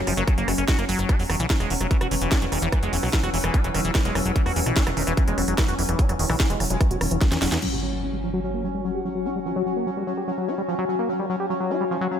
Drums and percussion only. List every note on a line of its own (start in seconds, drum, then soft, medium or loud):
0.07 cross-stick soft
0.07 open hi-hat loud
0.17 closed hi-hat medium
0.28 kick loud
0.28 cross-stick soft
0.28 closed hi-hat medium
0.38 closed hi-hat medium
0.48 cross-stick medium
0.48 open hi-hat loud
0.58 closed hi-hat medium
0.68 kick loud
0.68 snare loud
0.68 closed hi-hat medium
0.79 cross-stick soft
0.79 closed hi-hat medium
0.89 open hi-hat loud
0.99 cross-stick soft
0.99 closed hi-hat medium
1.09 kick loud
1.09 cross-stick soft
1.09 closed hi-hat medium
1.19 open hi-hat medium
1.30 cross-stick medium
1.30 open hi-hat loud
1.40 closed hi-hat medium
1.50 kick loud
1.50 snare loud
1.50 closed hi-hat medium
1.60 cross-stick soft
1.60 closed hi-hat medium
1.70 open hi-hat loud
1.81 cross-stick soft
1.81 closed hi-hat medium
1.91 kick loud
1.91 closed hi-hat medium
2.01 cross-stick medium
2.01 closed hi-hat medium
2.11 open hi-hat loud
2.21 closed hi-hat medium
2.32 kick loud
2.32 cross-stick soft
2.32 snare loud
2.32 closed hi-hat medium
2.42 closed hi-hat medium
2.52 cross-stick soft
2.52 open hi-hat loud
2.62 closed hi-hat medium
2.72 kick loud
2.72 cross-stick medium
2.72 closed hi-hat medium
2.83 closed hi-hat medium
2.93 open hi-hat loud
3.03 cross-stick soft
3.03 open hi-hat medium
3.13 kick loud
3.13 snare loud
3.23 cross-stick soft
3.23 closed hi-hat medium
3.34 open hi-hat loud
3.44 cross-stick medium
3.44 closed hi-hat medium
3.54 kick loud
3.54 closed hi-hat medium
3.64 closed hi-hat medium
3.74 cross-stick soft
3.74 open hi-hat loud
3.85 closed hi-hat medium
3.95 kick loud
3.95 cross-stick soft
3.95 snare loud
3.95 closed hi-hat medium
4.05 closed hi-hat medium
4.15 cross-stick medium
4.15 open hi-hat loud
4.26 closed hi-hat medium
4.36 kick loud
4.36 closed hi-hat medium
4.46 cross-stick soft
4.46 open hi-hat medium
4.56 open hi-hat loud
4.66 cross-stick soft
4.66 closed hi-hat medium
4.77 kick loud
4.77 snare loud
4.77 closed hi-hat medium
4.87 cross-stick medium
4.87 closed hi-hat medium
4.97 open hi-hat loud
5.07 closed hi-hat medium
5.17 kick loud
5.17 cross-stick soft
5.17 closed hi-hat medium
5.28 closed hi-hat medium
5.38 cross-stick soft
5.38 open hi-hat loud
5.48 closed hi-hat medium
5.58 kick loud
5.58 cross-stick medium
5.58 snare loud
5.58 closed hi-hat medium
5.68 closed hi-hat medium
5.79 open hi-hat loud
5.89 cross-stick soft
5.89 closed hi-hat medium
5.99 kick loud
5.99 closed hi-hat medium
6.09 cross-stick soft
6.09 closed hi-hat medium
6.19 open hi-hat loud
6.30 cross-stick medium
6.30 open hi-hat medium
6.40 kick loud
6.40 snare loud
6.40 closed hi-hat medium
6.50 closed hi-hat medium
6.60 cross-stick soft
6.60 open hi-hat loud
6.70 closed hi-hat medium
6.81 kick loud
6.81 cross-stick soft
6.81 closed hi-hat medium
6.91 closed hi-hat medium
7.01 cross-stick medium
7.01 open hi-hat loud
7.11 closed hi-hat medium
7.21 kick loud
7.21 snare medium
7.21 closed hi-hat medium
7.32 snare medium
7.32 closed hi-hat medium
7.42 snare medium
7.42 open hi-hat loud
7.52 snare medium
7.52 closed hi-hat medium
7.62 crash medium